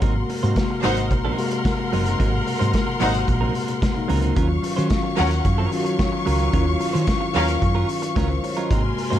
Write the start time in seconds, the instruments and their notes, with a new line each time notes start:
Already playing: tine electric piano F#5
0.01 fingered electric bass G#1, tine electric piano C3 G#3 A#3 F#4, clean electric guitar F#3 C4 D#4 A#4, string section A#4 F#5 C6, kick, closed hi-hat
0.15 muted clean electric guitar stroke
0.29 muted clean electric guitar stroke, open hi-hat
0.42 fingered electric bass G#2, tine electric piano C3 G#3 A#3 F#4, clean electric guitar F#3 C4 D#4 C5, closed hi-hat
0.56 kick, snare, closed hi-hat
0.70 muted clean electric guitar stroke
0.83 fingered electric bass G#1, clean electric guitar F#3 C4 D#4 A#4, string section D#4 C5 F#5, snare, open hi-hat
0.97 muted clean electric guitar stroke, closed hi-hat
1.11 fingered electric bass A#1, muted clean electric guitar stroke, kick, closed hi-hat
1.25 clean electric guitar F#3 C4 D#4 A#4
1.38 tine electric piano C3 G#3 A#3 F#4, muted clean electric guitar stroke, open hi-hat
1.51 muted clean electric guitar stroke, closed hi-hat
1.65 muted clean electric guitar stroke, kick, snare, closed hi-hat
1.79 muted clean electric guitar stroke
1.93 fingered electric bass F#1, clean electric guitar F#3 C4 D#4 A#4, open hi-hat
2.05 clean electric guitar F#3 C4 D#4 A#4, closed hi-hat
2.19 fingered electric bass G#1, tine electric piano B2 G#3 A#3 F#4, clean electric guitar F#3 C4 D#4 A#4, kick, closed hi-hat
2.26 tine electric piano C3
2.32 muted clean electric guitar stroke
2.46 muted clean electric guitar stroke, open hi-hat
2.59 fingered electric bass G#2, clean electric guitar F#3 C4 D#4 C5, closed hi-hat
2.73 muted clean electric guitar stroke, kick, snare, closed hi-hat
2.87 muted clean electric guitar stroke
3.00 fingered electric bass G#1, tine electric piano A#2 G#3 A#3 F#4, clean electric guitar F#3 C4 D#4 A#4, string section D#4 C5 F#5, open hi-hat
3.07 tine electric piano C3
3.14 muted clean electric guitar stroke, closed hi-hat
3.27 fingered electric bass A#1, muted clean electric guitar stroke, kick, closed hi-hat
3.41 clean electric guitar F#3 C4 D#4 A#4
3.55 muted clean electric guitar stroke, open hi-hat
3.68 muted clean electric guitar stroke, closed hi-hat
3.81 muted clean electric guitar stroke, kick, snare, closed hi-hat
3.95 tine electric piano C3 G#3 A#3 D#4, muted clean electric guitar stroke
4.08 fingered electric bass C#2, clean electric guitar F#3 C4 D#4 A#4, open hi-hat
4.21 clean electric guitar F#3 C4 D#4 A#4, closed hi-hat
4.35 fingered electric bass D#2, tine electric piano D#3 F#3 C#4 F4, clean electric guitar F#3 C#4 F4 A#4, string section F#3 F5 C#6, kick, closed hi-hat
4.49 muted clean electric guitar stroke
4.62 muted clean electric guitar stroke, open hi-hat
4.76 tine electric piano D#3 F#3 C#4 F#4, fingered electric bass D#3, clean electric guitar F#3 C#4 F4 C5, closed hi-hat
4.90 muted clean electric guitar stroke, kick, snare, closed hi-hat
5.03 muted clean electric guitar stroke
5.16 fingered electric bass D#2, clean electric guitar F#3 C#4 F4 A#4, string section C#4 A#4 F#5, snare, open hi-hat
5.31 muted clean electric guitar stroke, closed hi-hat
5.45 fingered electric bass F#2, muted clean electric guitar stroke, kick, closed hi-hat
5.58 clean electric guitar F#3 C#4 F4 A#4
5.72 tine electric piano D#3 F#3 C#4 F4, open hi-hat
5.80 tine electric piano F#4
5.85 muted clean electric guitar stroke, closed hi-hat
5.99 muted clean electric guitar stroke, kick, snare, closed hi-hat
6.13 muted clean electric guitar stroke
6.26 fingered electric bass C#2, clean electric guitar F#3 C#4 F4 A#4, open hi-hat
6.39 clean electric guitar F#3 C#4 F4 A#4, closed hi-hat
6.52 fingered electric bass D#2, tine electric piano D#3 F#3 C#4 E4, clean electric guitar F#3 C#4 F4 A#4, kick, closed hi-hat
6.61 tine electric piano F4
6.66 muted clean electric guitar stroke
6.80 muted clean electric guitar stroke, open hi-hat
6.93 fingered electric bass D#3, clean electric guitar F#3 C#4 F4 C5, closed hi-hat
7.07 muted clean electric guitar stroke, kick, snare, closed hi-hat
7.21 muted clean electric guitar stroke
7.34 fingered electric bass D#2, tine electric piano D#3 F#3 C#4 F4, clean electric guitar F#3 C#4 F4 A#4, string section C#4 A#4 F5, open hi-hat
7.47 muted clean electric guitar stroke, closed hi-hat
7.61 fingered electric bass F#2, muted clean electric guitar stroke, kick, closed hi-hat
7.75 clean electric guitar F#3 C#4 F4 A#4
7.89 open hi-hat
8.02 muted clean electric guitar stroke, closed hi-hat
8.16 fingered electric bass C#2, clean electric guitar F#3 C#4 F4 A#4, tine electric piano A#4, kick, snare, closed hi-hat
8.30 tine electric piano C5, muted clean electric guitar stroke
8.43 tine electric piano C#5, muted clean electric guitar stroke, open hi-hat
8.57 clean electric guitar F#3 C#4 F4 A#4, tine electric piano D#5, closed hi-hat
8.70 fingered electric bass G#1, tine electric piano C3 G#3 A#3 F#4, clean electric guitar F#3 C4 D#4 A#4, string section A#4 G#5 C6, kick, closed hi-hat
8.84 muted clean electric guitar stroke
8.98 muted clean electric guitar stroke, open hi-hat
9.10 fingered electric bass G#2, tine electric piano C3 G#3 A#3 F#4, clean electric guitar F#3 C4 D#4 C5, closed hi-hat